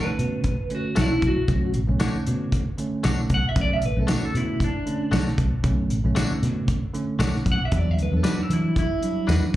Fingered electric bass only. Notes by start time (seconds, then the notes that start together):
0.07 muted fingered electric bass stroke
0.19 B2
0.97 B1
1.22 B1
1.48 B1
1.74 A1
1.89 B1
2.15 muted fingered electric bass stroke
2.28 B2
3.04 B1
3.30 B1
3.56 B1
3.83 A1
3.97 B1
4.23 muted fingered electric bass stroke
4.34 B2
5.12 B1
5.38 B1
5.64 B1
5.90 A1
6.05 B1
6.31 muted fingered electric bass stroke
6.43 B2
7.19 B1
7.45 B1
7.72 E2
7.98 D2
8.12 E2
8.38 muted fingered electric bass stroke
8.50 E3
9.28 E2